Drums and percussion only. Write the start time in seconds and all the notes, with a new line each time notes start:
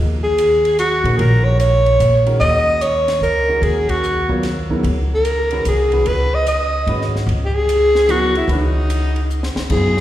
0.38 hi-hat pedal, ride
0.65 ride
0.79 hi-hat pedal, ride
1.05 ride
1.19 ride
1.60 hi-hat pedal, ride
1.86 ride
2.00 hi-hat pedal, ride
2.26 ride
2.41 ride
2.81 hi-hat pedal, ride
3.08 snare, ride
3.23 hi-hat pedal
3.63 ride
3.89 kick, ride
4.03 hi-hat pedal
4.29 kick
4.43 snare, ride
4.70 kick
4.84 ride
5.25 hi-hat pedal, ride
5.51 ride
5.65 hi-hat pedal, ride
5.92 ride
6.06 ride
6.47 hi-hat pedal, ride
6.87 ride
7.01 snare
7.16 snare
7.29 ride
7.69 hi-hat pedal, ride
7.95 snare
8.09 hi-hat pedal, ride
8.35 ride
8.49 ride
8.90 hi-hat pedal, ride
9.16 ride
9.30 hi-hat pedal
9.43 snare
9.56 snare
9.70 kick, crash
9.97 snare